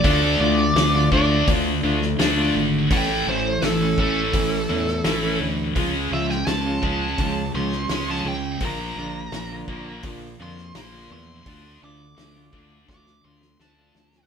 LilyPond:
<<
  \new Staff \with { instrumentName = "Lead electric guitar" } { \time 4/4 \key d \lydian \tempo 4 = 84 d''4. d''8 r2 | g''8 c''8 a'8 a'2 r8 | r8 e''16 g''16 a''4. c'''8 c'''16 a''16 g''8 | bes''2 r8 c'''8 c'''8 c'''8~ |
c'''8 d'''4. d'''8 c'''8 a''4 | }
  \new Staff \with { instrumentName = "Clean electric guitar" } { \time 4/4 \key d \lydian <d a d' f'>16 r16 <d a d' f'>16 r8 <d a d' f'>16 <d a d' f'>16 r16 <d a d' f'>16 r16 <d a d' f'>16 r8 <d a d' f'>16 r8 | <e a cis' e'>16 r16 <e a cis' e'>16 r8 <e a cis' e'>16 <e a cis' e'>16 r16 <e a cis' e'>16 r16 <e a cis' e'>16 r8 <e a cis' e'>16 r8 | <eis gis cis' eis'>16 r16 <eis gis cis' eis'>16 r8 <eis gis cis' eis'>16 <eis gis cis' eis'>16 r16 <eis gis cis' eis'>16 r16 <eis gis cis' eis'>16 r8 <eis gis cis' eis'>16 r8 | <d bes d' f'>16 r16 <d bes d' f'>16 r8 <d bes d' f'>16 <d bes d' f'>16 r16 <d bes d' f'>16 r16 <d bes d' f'>16 r8 <d bes d' f'>16 r8 |
<d a d' f'>16 r16 <d a d' f'>16 r8 <d a d' f'>16 <d a d' f'>16 r16 <d a d' f'>16 r16 <d a d' f'>16 r8 <d a d' f'>16 r8 | }
  \new Staff \with { instrumentName = "Overdriven electric guitar" } { \clef bass \time 4/4 \key d \lydian <d a d'>2 <d a d'>2 | <a, e a>2 <a, e a>2 | <cis gis cis'>2 <cis gis cis'>2 | <bes, f bes>2 <bes, f bes>2 |
<d a d'>2 <d a d'>2 | }
  \new Staff \with { instrumentName = "Distorted electric guitar" } { \clef bass \time 4/4 \key d \lydian <d a d'>8 <d a>8 <d a>8 <d a d'>8 <d a>8 <d a>8 <d a d'>8 <d a>8 | <a, e a>8 <a, e>8 <a, e>8 <a, e a>8 <a, e>8 <a, e>8 <a, e a>8 <a, e>8 | <cis gis cis'>8 <cis gis>8 <cis gis>8 <cis gis cis'>8 <cis gis>8 <cis gis>8 <cis gis cis'>8 <cis gis>8 | <bes, f bes>8 <bes, f>8 <bes, f>8 <bes, f bes>8 <bes, f>8 <bes, f>8 <bes, f bes>8 <bes, f>8 |
<d a d'>8 <d a>8 <d a>8 <d a d'>8 <d a>8 <d a>8 <d a d'>8 <d a>8 | }
  \new Staff \with { instrumentName = "Fingered electric bass" } { \clef bass \time 4/4 \key d \lydian d,8 d,8 d,8 d,8 d,8 d,8 d,8 gis,,8 | a,,8 a,,8 a,,8 a,,8 a,,8 e,8 a,,8 d,8 | cis,8 cis,8 cis,8 cis,8 cis,8 cis,8 cis,8 cis,8 | bes,,8 bes,,8 bes,,8 bes,,8 bes,,8 f,8 bes,,8 e,8 |
d,8 d,8 d,8 d,8 d,8 d,8 d,8 d,8 | }
  \new DrumStaff \with { instrumentName = "Drums" } \drummode { \time 4/4 <hho bd>4 <hho sn>8 bd8 <hho bd>8. sn16 <hho sn>4 | <hho bd>4 <hho sn>8 bd8 <hho bd>8. sn16 <hho sn>4 | <hho bd>8. sn16 <hho sn>8 bd8 <hho bd>8. sn16 <hho sn>4 | <hho bd>4 <hho sn>8 bd8 <hho bd>8. sn16 <hho sn>4 |
<hho bd>4 <hho sn>8 bd8 <bd sn>16 sn8 sn16 sn8 sn16 sn16 | }
>>